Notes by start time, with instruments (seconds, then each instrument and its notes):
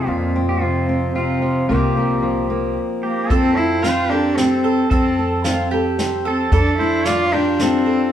Already playing: steel-string acoustic guitar F3 C4
0.07 upright bass F2, steel-string acoustic guitar F2, cello A#2, pedal steel guitar F4
0.36 steel-string acoustic guitar C4
0.48 cello A#2, pedal steel guitar G4
0.61 cello C3, steel-string acoustic guitar F3, pedal steel guitar F4
0.89 steel-string acoustic guitar C4
1.15 cello C3, steel-string acoustic guitar F4, pedal steel guitar F4
1.42 steel-string acoustic guitar F3
1.69 upright bass C2, cello A#2, steel-string acoustic guitar C3 F3 A#3 C4 F4, pedal steel guitar G4
1.97 steel-string acoustic guitar A#3
2.23 steel-string acoustic guitar F3
2.50 steel-string acoustic guitar A#3
3.03 cello A#3, pedal steel guitar G4
3.29 upright bass F2, steel-string acoustic guitar F2, cello C4, pedal steel guitar A4, mandolin A4, kick, closed hi-hat
3.55 steel-string acoustic guitar C4, cello E4, pedal steel guitar C5
3.83 steel-string acoustic guitar F3 C4, cello F4, mandolin F4, pedal steel guitar C5, snare, closed hi-hat
4.09 cello D4, mandolin G4, steel-string acoustic guitar A4, pedal steel guitar A#4
4.36 steel-string acoustic guitar C3 C4, cello C4, pedal steel guitar A4, snare, closed hi-hat
4.64 mandolin A4
4.90 upright bass F2, steel-string acoustic guitar F2, cello C4, pedal steel guitar A4, mandolin A4, kick, closed hi-hat
5.19 steel-string acoustic guitar A4
5.44 steel-string acoustic guitar F3 C4, mandolin F4, snare, closed hi-hat
5.71 mandolin G4, steel-string acoustic guitar A4
5.99 steel-string acoustic guitar C3 C4, snare, closed hi-hat
6.25 cello C4, mandolin A4, pedal steel guitar A4
6.52 upright bass F2, steel-string acoustic guitar F2, cello D4, mandolin A4, pedal steel guitar A4, kick, closed hi-hat
6.79 steel-string acoustic guitar D4, cello E4, pedal steel guitar C5
7.05 steel-string acoustic guitar F3 D4, mandolin F4, cello F4, pedal steel guitar D5, snare, closed hi-hat
7.33 cello D4, steel-string acoustic guitar F4, mandolin G4, pedal steel guitar A#4
7.59 steel-string acoustic guitar F2 D4, cello C4, pedal steel guitar A4, snare, closed hi-hat
7.86 mandolin A4